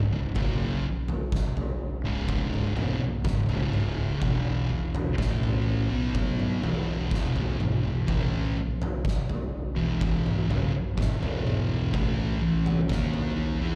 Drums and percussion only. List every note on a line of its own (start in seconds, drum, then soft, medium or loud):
0.35 kick loud
0.35 floor tom medium
1.08 floor tom medium
1.32 kick loud
1.32 snare medium
1.57 floor tom medium
2.28 kick loud
2.28 floor tom medium
2.54 mid tom medium
2.77 floor tom medium
2.77 mid tom medium
3.24 kick loud
3.24 snare medium
3.24 mid tom medium
3.49 floor tom medium
3.73 mid tom medium
4.22 kick loud
4.22 floor tom medium
4.95 floor tom medium
5.18 kick loud
5.18 snare medium
5.43 floor tom medium
6.15 kick loud
6.15 floor tom medium
6.39 mid tom medium
6.63 floor tom medium
7.11 kick loud
7.11 snare medium
7.36 floor tom medium
7.60 mid tom medium
8.08 kick loud
8.08 floor tom medium
8.82 floor tom medium
9.05 kick loud
9.05 snare medium
9.29 floor tom medium
10.01 kick loud
10.01 floor tom medium
10.26 mid tom medium
10.51 floor tom medium
10.51 mid tom medium
10.98 kick loud
10.98 snare medium
10.98 mid tom medium
11.23 floor tom medium
11.47 mid tom medium
11.94 kick loud
11.94 floor tom medium
12.66 floor tom medium
12.89 kick loud
12.89 snare medium
13.14 floor tom medium